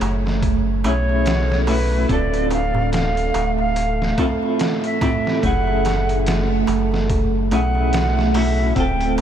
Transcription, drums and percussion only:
0.01 closed hi-hat medium
0.01 darbuka tek medium
0.26 snare soft
0.26 darbuka tek soft
0.42 kick loud
0.42 closed hi-hat medium
0.42 darbuka tek medium
0.84 closed hi-hat medium
0.84 darbuka tek loud
1.09 darbuka tek soft
1.25 snare loud
1.25 closed hi-hat medium
1.25 darbuka tek soft
1.50 snare soft
1.50 darbuka tek soft
1.67 open hi-hat medium
1.67 darbuka tek medium
1.91 darbuka tek soft
2.09 kick loud
2.09 closed hi-hat medium
2.09 darbuka tek soft
2.34 closed hi-hat soft
2.34 darbuka tek soft
2.51 closed hi-hat medium
2.51 darbuka tek medium
2.74 darbuka tek soft
2.74 darbuka dum medium
2.92 snare loud
2.92 closed hi-hat medium
2.92 darbuka tek medium
3.17 closed hi-hat soft
3.34 closed hi-hat medium
3.34 darbuka tek medium
3.58 darbuka tek soft
3.76 closed hi-hat medium
3.76 darbuka tek soft
4.02 snare soft
4.18 kick medium
4.18 closed hi-hat medium
4.18 darbuka tek medium
4.43 darbuka tek soft
4.59 snare loud
4.59 closed hi-hat loud
4.59 darbuka tek soft
4.84 closed hi-hat soft
4.84 darbuka tek soft
5.01 kick loud
5.01 closed hi-hat medium
5.01 darbuka tek medium
5.01 darbuka dum medium
5.26 snare soft
5.26 darbuka tek soft
5.42 kick loud
5.42 closed hi-hat medium
5.42 darbuka tek soft
5.67 darbuka tek soft
5.85 snare soft
5.85 closed hi-hat medium
5.85 darbuka tek medium
6.09 closed hi-hat soft
6.09 darbuka tek soft
6.26 snare loud
6.26 closed hi-hat medium
6.26 darbuka tek medium
6.67 closed hi-hat medium
6.67 darbuka tek medium
6.92 snare soft
6.92 darbuka tek soft
7.10 kick loud
7.10 closed hi-hat medium
7.10 darbuka tek medium
7.51 closed hi-hat medium
7.51 darbuka tek medium
7.75 darbuka tek soft
7.93 snare loud
7.93 closed hi-hat medium
7.93 darbuka tek soft
8.17 snare soft
8.17 darbuka tek soft
8.34 open hi-hat medium
8.34 darbuka tek medium
8.59 darbuka tek soft
8.76 kick loud
8.76 closed hi-hat medium
8.76 darbuka tek medium
9.00 closed hi-hat soft
9.00 darbuka tek soft
9.18 closed hi-hat medium
9.18 darbuka tek medium

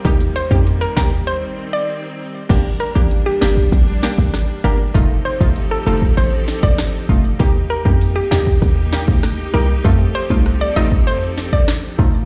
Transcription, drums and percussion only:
0.05 kick loud
0.05 closed hi-hat medium
0.20 closed hi-hat medium
0.36 closed hi-hat medium
0.51 kick medium
0.66 closed hi-hat medium
0.82 closed hi-hat medium
0.97 kick medium
0.97 snare loud
0.97 closed hi-hat medium
2.50 kick loud
2.50 closed hi-hat medium
2.50 crash loud
2.96 kick medium
3.11 closed hi-hat medium
3.42 snare loud
3.57 kick medium
3.72 kick medium
3.72 closed hi-hat medium
4.03 snare loud
4.18 kick medium
4.34 cross-stick medium
4.34 snare medium
4.34 closed hi-hat medium
4.95 kick loud
4.95 closed hi-hat medium
5.41 kick medium
5.56 closed hi-hat medium
6.02 kick medium
6.17 closed hi-hat medium
6.48 snare medium
6.63 kick medium
6.78 cross-stick medium
6.78 snare loud
6.78 closed hi-hat medium
7.09 kick loud
7.40 kick loud
7.40 closed hi-hat medium
7.86 kick loud
8.01 closed hi-hat medium
8.32 snare loud
8.47 kick medium
8.62 kick medium
8.62 closed hi-hat medium
8.93 snare loud
9.08 kick medium
9.23 cross-stick medium
9.23 snare medium
9.23 closed hi-hat medium
9.84 kick loud
9.84 closed hi-hat medium
10.30 kick loud
10.46 cross-stick medium
10.46 closed hi-hat medium
10.92 kick medium
11.07 closed hi-hat medium
11.38 snare medium
11.53 kick loud
11.68 cross-stick medium
11.68 snare loud
11.68 closed hi-hat medium
11.99 kick loud

